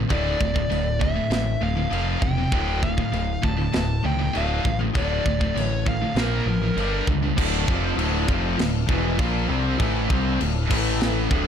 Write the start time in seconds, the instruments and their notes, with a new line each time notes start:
0.08 picked electric bass D1, distorted electric guitar D2 A2 D3, lead electric guitar D5, kick, china
0.39 picked electric bass D1, distorted electric guitar D2 A2, kick
0.54 distorted electric guitar D2 A2, kick
0.69 picked electric bass D1, distorted electric guitar D2 A2, china
0.99 distorted electric guitar D2 A2, lead electric guitar E5, kick
1.14 distorted electric guitar D2 A2
1.30 picked electric bass A1, distorted electric guitar D2 A2, snare, china
1.61 picked electric bass D1, distorted electric guitar D2 A2, lead electric guitar F5
1.75 distorted electric guitar D2 A2
1.90 picked electric bass F1, distorted electric guitar F2 C3 F3, china
1.94 lead electric guitar F5
2.21 picked electric bass E1, distorted electric guitar F2 C3, lead electric guitar G5, kick
2.37 distorted electric guitar F2 C3
2.52 picked electric bass D1, distorted electric guitar D2 A2 D3, kick, china
2.83 distorted electric guitar D2 A2, lead electric guitar F5, kick
2.98 distorted electric guitar D2 A2, kick
3.12 picked electric bass D1, distorted electric guitar D2 A2, china
3.42 picked electric bass D1, distorted electric guitar D2 A2, lead electric guitar A5, kick
3.57 distorted electric guitar D2 A2
3.72 picked electric bass D1, distorted electric guitar D2 A2, snare, china
4.03 picked electric bass C#2, distorted electric guitar D2 A2, lead electric guitar G5
4.18 distorted electric guitar D2 A2
4.33 picked electric bass D1, distorted electric guitar D2 A2 D3, lead electric guitar F5, china
4.63 picked electric bass A1, distorted electric guitar D2 A2, kick
4.79 distorted electric guitar D2 A2
4.94 picked electric bass D1, distorted electric guitar D2 A2 D3, lead electric guitar D5, kick, china
5.25 picked electric bass D1, distorted electric guitar D2 A2, kick
5.39 distorted electric guitar D2 A2, kick
5.54 picked electric bass A1, distorted electric guitar D2 A2, china
5.60 lead electric guitar C#5
5.85 distorted electric guitar D2 A2, lead electric guitar F5, kick
6.01 distorted electric guitar D2 A2
6.15 picked electric bass A#1, distorted electric guitar A#2 F3 A#3, snare, china
6.21 lead electric guitar A#4
6.46 picked electric bass A1, distorted electric guitar A#2 F3
6.62 distorted electric guitar A#2 F3
6.76 picked electric bass G1, distorted electric guitar G2 D3 G3, china
7.07 picked electric bass C#2, distorted electric guitar G2 D3, kick
7.22 distorted electric guitar G2 D3
7.37 picked electric bass D1, distorted electric guitar D2 A2 D3, pipe organ F3 A4 F5, kick, crash
7.41 pipe organ D4
7.67 picked electric bass F1, distorted electric guitar F2 C3 F3, kick
7.96 picked electric bass D1, distorted electric guitar D2 A2 D3, crash
8.27 picked electric bass F1, distorted electric guitar F2 C3 F3, kick
8.57 picked electric bass D1, distorted electric guitar D2 A2, snare, crash
8.87 picked electric bass E1, distorted electric guitar E2 B2 E3, kick
9.18 picked electric bass A#1, distorted electric guitar A#2 F3 A#3, kick, crash
9.48 picked electric bass C2, distorted electric guitar C3 G3 C4
9.77 picked electric bass A1, distorted electric guitar A2 E3 A3, kick, crash
10.09 picked electric bass C2, distorted electric guitar C3 G3 C4, kick
10.39 picked electric bass D1, distorted electric guitar D2 A2, crash
10.68 picked electric bass A1, distorted electric guitar A2 E3 A3, pipe organ E3 A3 E5, kick, crash
11.01 snare, crash
11.29 picked electric bass D1, distorted electric guitar D2 A2 D3, pipe organ F3 D4 F5, kick